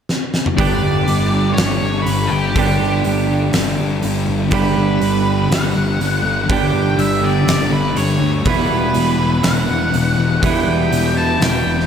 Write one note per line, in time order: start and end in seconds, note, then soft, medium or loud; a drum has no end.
0.09 snare medium
0.34 snare medium
0.46 mid tom medium
0.56 0.81 G1 medium
0.56 1.05 G2 medium
0.56 0.83 D3 medium
0.56 0.81 G3 medium
0.56 2.58 B3 medium
0.56 2.58 D4 medium
0.56 2.59 G4 loud
0.56 1.53 D5 medium
0.56 kick loud
0.56 open hi-hat medium
0.81 1.05 G1 medium
0.81 1.06 D3 medium
0.81 1.08 G3 medium
1.05 1.53 G1 medium
1.05 1.54 G2 medium
1.05 1.33 D3 medium
1.05 1.30 G3 medium
1.05 open hi-hat soft
1.30 1.55 D3 soft
1.30 1.57 G3 medium
1.54 2.02 G2 medium
1.54 1.82 D3 medium
1.54 2.02 C#5 medium
1.54 open hi-hat medium
1.58 1.80 G1 medium
1.58 1.79 G3 medium
1.58 snare loud
1.79 2.05 G1 medium
1.79 2.04 D3 medium
1.79 2.06 G3 medium
2.02 2.52 G2 medium
2.02 2.30 D3 medium
2.02 2.30 B4 medium
2.06 2.29 G1 medium
2.06 2.27 G3 medium
2.06 open hi-hat medium
2.27 2.56 G3 medium
2.27 2.99 G4 medium
2.31 2.54 G1 medium
2.31 2.53 D3 medium
2.53 2.78 G1 loud
2.53 3.02 G2 medium
2.53 2.79 D3 loud
2.53 2.76 G3 medium
2.53 kick loud
2.53 open hi-hat medium
2.58 4.53 B3 medium
2.58 4.53 D4 loud
2.58 4.54 G4 medium
2.77 3.03 G1 medium
2.77 3.03 D3 soft
2.77 3.05 G3 medium
3.02 3.51 G1 medium
3.02 3.50 G2 medium
3.02 3.28 D3 medium
3.02 3.26 G3 medium
3.02 open hi-hat soft
3.27 3.52 D3 medium
3.27 3.54 G3 medium
3.51 3.77 G1 medium
3.51 4.00 G2 medium
3.51 3.78 D3 medium
3.51 snare loud
3.51 open hi-hat medium
3.55 3.76 G3 medium
3.76 4.02 G1 medium
3.76 4.01 D3 soft
3.76 4.03 G3 medium
4.00 4.26 G1 medium
4.00 4.50 G2 medium
4.00 4.28 D3 medium
4.00 4.25 G3 medium
4.00 open hi-hat soft
4.25 4.51 G1 medium
4.25 4.54 G3 medium
4.30 4.51 D3 medium
4.51 4.75 G1 loud
4.51 5.00 G2 medium
4.51 4.78 D3 loud
4.51 6.51 B3 medium
4.51 6.51 D4 loud
4.51 6.52 G4 loud
4.51 5.55 B4 medium
4.51 kick medium
4.51 open hi-hat medium
4.55 4.76 G3 loud
4.76 4.99 G1 medium
4.76 5.01 D3 medium
4.76 5.03 G3 medium
5.00 5.47 G1 medium
5.00 5.48 G2 medium
5.00 5.27 D3 medium
5.00 5.24 G3 medium
5.00 open hi-hat soft
5.24 5.49 D3 medium
5.24 5.52 G3 medium
5.48 5.74 G1 medium
5.48 5.97 G2 medium
5.48 5.75 D3 medium
5.48 open hi-hat medium
5.52 5.73 G3 medium
5.52 6.49 F#5 medium
5.52 snare loud
5.73 5.99 G1 medium
5.73 5.99 D3 medium
5.73 6.01 G3 medium
5.98 6.23 G1 medium
5.98 6.46 G2 medium
5.98 6.25 D3 medium
5.98 6.22 G3 medium
5.98 open hi-hat soft
6.22 6.47 G1 medium
6.22 6.50 G3 medium
6.26 6.48 D3 soft
6.47 6.72 G1 loud
6.47 6.95 G2 medium
6.47 6.75 D3 medium
6.47 6.72 G3 medium
6.47 6.99 G5 medium
6.47 kick loud
6.47 open hi-hat medium
6.51 8.47 B3 medium
6.51 8.48 D4 loud
6.51 8.49 G4 loud
6.73 6.96 G1 medium
6.73 6.97 D3 medium
6.73 6.99 G3 medium
6.96 7.43 G1 medium
6.96 7.44 G2 medium
6.96 7.22 D3 medium
6.96 7.20 G3 medium
6.96 7.25 E5 medium
6.96 open hi-hat soft
7.21 7.46 D3 medium
7.21 7.49 G3 medium
7.21 7.49 D5 medium
7.45 7.70 G1 medium
7.45 7.91 G2 medium
7.45 7.71 D3 medium
7.45 7.68 G3 medium
7.45 snare loud
7.45 open hi-hat medium
7.51 7.72 D5 medium
7.69 7.95 G1 medium
7.69 7.94 D3 medium
7.69 7.96 G3 medium
7.69 7.97 B4 medium
7.93 8.42 G2 medium
7.93 8.21 D3 medium
7.93 8.18 G3 medium
7.93 open hi-hat soft
7.97 8.20 G1 medium
7.97 8.31 C#5 medium
8.18 8.44 D2 medium
8.18 8.45 D3 soft
8.18 8.46 G3 medium
8.43 8.69 E1 medium
8.43 8.93 E2 medium
8.43 8.70 B2 loud
8.43 8.67 E3 loud
8.43 kick loud
8.43 open hi-hat medium
8.47 10.42 G3 medium
8.47 10.45 B3 loud
8.47 10.45 E4 loud
8.47 9.48 B4 medium
8.68 8.93 E1 medium
8.68 8.94 B2 medium
8.68 8.97 E3 medium
8.93 9.41 E1 medium
8.93 9.43 E2 medium
8.93 9.20 B2 medium
8.93 9.17 E3 medium
8.93 open hi-hat soft
9.18 9.43 B2 medium
9.18 9.46 E3 medium
9.43 9.67 E1 medium
9.43 9.91 E2 medium
9.43 9.69 B2 medium
9.43 9.67 E3 medium
9.43 10.42 F#5 medium
9.43 snare loud
9.43 open hi-hat medium
9.67 9.92 E1 medium
9.67 9.93 B2 medium
9.67 9.95 E3 medium
9.92 10.16 E1 medium
9.92 10.40 E2 medium
9.92 10.18 B2 medium
9.92 10.16 E3 medium
9.92 open hi-hat soft
10.16 10.41 E1 medium
10.16 10.42 B2 soft
10.16 10.44 E3 medium
10.41 10.65 E1 loud
10.41 10.89 E2 medium
10.41 10.66 B2 medium
10.41 10.64 E3 medium
10.41 11.87 G3 medium
10.41 10.54 F#5 loud
10.41 kick loud
10.41 open hi-hat medium
10.45 11.87 B3 medium
10.45 11.87 E4 loud
10.54 11.17 G5 loud
10.64 10.90 E1 medium
10.64 10.91 B2 soft
10.64 10.93 E3 medium
10.90 11.37 E1 medium
10.90 11.38 E2 medium
10.90 11.17 B2 medium
10.90 11.14 E3 medium
10.90 open hi-hat medium
11.15 11.40 B2 medium
11.15 11.42 E3 medium
11.15 11.42 A5 medium
11.39 11.64 E1 medium
11.39 11.87 E2 medium
11.39 11.65 B2 medium
11.39 11.63 E3 loud
11.39 11.87 G5 medium
11.39 snare loud
11.39 open hi-hat medium
11.63 11.87 E1 medium
11.63 11.87 B2 medium
11.63 11.87 E3 medium
11.80 snare soft